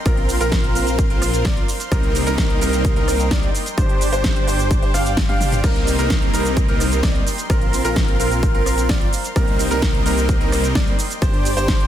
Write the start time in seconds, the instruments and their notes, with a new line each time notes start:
Already playing: analog synth pad A#4 C6
0.06 detuned saw bass A#1, supersaw synth C4 F4 A#4, grand piano A#4, analog synth pad C5 F5, kick, cross-stick, closed hi-hat, cabasa
0.17 closed hi-hat
0.29 open hi-hat, cabasa
0.41 detuned saw bass A#1, supersaw synth C4 F4 A#4, grand piano A#4, closed hi-hat, cabasa
0.52 kick, snare, closed hi-hat, cabasa
0.64 closed hi-hat
0.75 detuned saw bass A#1, supersaw synth C4 F4 A#4, grand piano A#4, open hi-hat, cabasa
0.87 closed hi-hat, cabasa
0.99 kick, closed hi-hat, cabasa
1.10 detuned saw bass A#1, supersaw synth C4 F4 A#4, grand piano A#4, closed hi-hat
1.22 cross-stick, open hi-hat, cabasa
1.33 closed hi-hat, cabasa
1.45 detuned saw bass A#1, grand piano D5, supersaw synth D5, kick, snare, closed hi-hat, cabasa
1.57 closed hi-hat
1.68 open hi-hat, cabasa
1.80 closed hi-hat, cabasa
1.92 detuned saw bass C2, supersaw synth G3 A#3 C4 D#4 A#4, analog synth pad A#4 D#5 G5, grand piano A#4, kick, cross-stick, closed hi-hat, cabasa
2.03 closed hi-hat
2.15 open hi-hat, cabasa
2.26 detuned saw bass C2, supersaw synth G3 A#3 C4 D#4 A#4, grand piano A#4, closed hi-hat, cabasa
2.38 kick, snare, closed hi-hat, cabasa
2.50 closed hi-hat
2.61 detuned saw bass C2, supersaw synth G3 A#3 C4 D#4 A#4, grand piano A#4, open hi-hat, cabasa
2.73 closed hi-hat, cabasa
2.85 kick, closed hi-hat, cabasa
2.96 detuned saw bass C2, supersaw synth G3 A#3 C4 D#4 A#4, grand piano A#4, closed hi-hat
3.08 cross-stick, open hi-hat, cabasa
3.20 closed hi-hat, cabasa
3.31 grand piano D5, kick, snare, closed hi-hat, cabasa
3.43 closed hi-hat
3.55 open hi-hat, cabasa
3.66 closed hi-hat, cabasa
3.78 detuned saw bass G1, supersaw synth D4 G4 C5, analog synth pad C5 D5 D6, grand piano C5, kick, cross-stick, closed hi-hat, cabasa
3.89 closed hi-hat
4.01 open hi-hat, cabasa
4.13 detuned saw bass G1, supersaw synth D4 G4 C5, grand piano C5, closed hi-hat, cabasa
4.24 kick, snare, closed hi-hat, cabasa
4.36 closed hi-hat
4.47 detuned saw bass G1, supersaw synth D4 G4 C5, grand piano C5, open hi-hat, cabasa
4.59 closed hi-hat, cabasa
4.71 kick, closed hi-hat, cabasa
4.82 detuned saw bass G1, supersaw synth D4 G4 C5, grand piano C5, closed hi-hat
4.94 detuned saw bass G1, supersaw synth D4 G4 F5, grand piano F5, cross-stick, open hi-hat, cabasa
5.06 closed hi-hat, cabasa
5.17 kick, snare, closed hi-hat, high tom, cabasa
5.29 detuned saw bass G1, supersaw synth D4 G4 F5, grand piano F5, closed hi-hat, high tom
5.41 open hi-hat, mid tom, cabasa
5.52 closed hi-hat, mid tom, cabasa
5.64 supersaw synth G3 A#3 C4 D#4 A#4, analog synth pad A#4 D#5 C6, grand piano A#4, kick, cross-stick, closed hi-hat, crash, cabasa
5.76 closed hi-hat
5.87 open hi-hat, cabasa
5.99 detuned saw bass C2, supersaw synth G3 A#3 C4 D#4 A#4, grand piano A#4, closed hi-hat, cabasa
6.10 kick, snare, closed hi-hat, cabasa
6.22 closed hi-hat
6.33 detuned saw bass C2, supersaw synth G3 A#3 C4 D#4 A#4, grand piano A#4, open hi-hat, cabasa
6.45 closed hi-hat, cabasa
6.57 kick, closed hi-hat, cabasa
6.68 detuned saw bass C2, supersaw synth G3 A#3 C4 D#4 A#4, grand piano A#4, closed hi-hat
6.80 cross-stick, open hi-hat, cabasa
6.92 closed hi-hat, cabasa
7.03 grand piano D5, kick, snare, closed hi-hat, cabasa
7.15 closed hi-hat
7.27 open hi-hat, cabasa
7.38 closed hi-hat, cabasa
7.50 detuned saw bass A#1, supersaw synth C4 F4 A#4, grand piano A#4, analog synth pad A#4 C5 F5, kick, cross-stick, closed hi-hat, cabasa
7.61 closed hi-hat
7.73 open hi-hat, cabasa
7.85 detuned saw bass A#1, supersaw synth C4 F4 A#4, grand piano A#4, closed hi-hat, cabasa
7.96 kick, snare, closed hi-hat, cabasa
8.08 closed hi-hat
8.20 detuned saw bass A#1, supersaw synth C4 F4 A#4, grand piano A#4, open hi-hat, cabasa
8.31 closed hi-hat, cabasa
8.43 kick, closed hi-hat, cabasa
8.55 detuned saw bass A#1, supersaw synth C4 F4 A#4, grand piano A#4, closed hi-hat
8.66 cross-stick, open hi-hat, cabasa
8.78 closed hi-hat, cabasa
8.89 supersaw synth C4 F4, grand piano D5, kick, snare, closed hi-hat, cabasa
9.01 closed hi-hat
9.13 open hi-hat, cabasa
9.24 closed hi-hat, cabasa
9.36 detuned saw bass C2, supersaw synth G3 A#3 C4 D#4 A#4, grand piano A#4, analog synth pad D#5 G5 C6, kick, cross-stick, closed hi-hat, cabasa
9.48 closed hi-hat
9.59 open hi-hat, cabasa
9.71 detuned saw bass C2, supersaw synth G3 A#3 C4 D#4 A#4, grand piano A#4, closed hi-hat, cabasa
9.82 kick, snare, closed hi-hat, cabasa
9.94 closed hi-hat
10.06 detuned saw bass C2, supersaw synth G3 A#3 C4 D#4 A#4, grand piano A#4, open hi-hat, cabasa
10.17 closed hi-hat, cabasa
10.29 kick, closed hi-hat, cabasa
10.41 detuned saw bass C2, supersaw synth G3 A#3 C4 D#4 A#4, grand piano A#4, closed hi-hat
10.52 cross-stick, open hi-hat, cabasa
10.64 closed hi-hat, cabasa
10.75 supersaw synth G3 A#3 D#4 D5, grand piano D5, kick, snare, closed hi-hat, cabasa
10.87 closed hi-hat
10.99 open hi-hat, cabasa
11.10 closed hi-hat, cabasa
11.22 detuned saw bass G1, supersaw synth D4 G4 C5, analog synth pad C5 D5 G5 D6, grand piano C5, kick, cross-stick, closed hi-hat, cabasa
11.34 closed hi-hat
11.45 open hi-hat, cabasa
11.57 detuned saw bass G1, supersaw synth D4 G4 C5, grand piano C5, closed hi-hat, cabasa
11.68 kick, snare, closed hi-hat, cabasa
11.80 closed hi-hat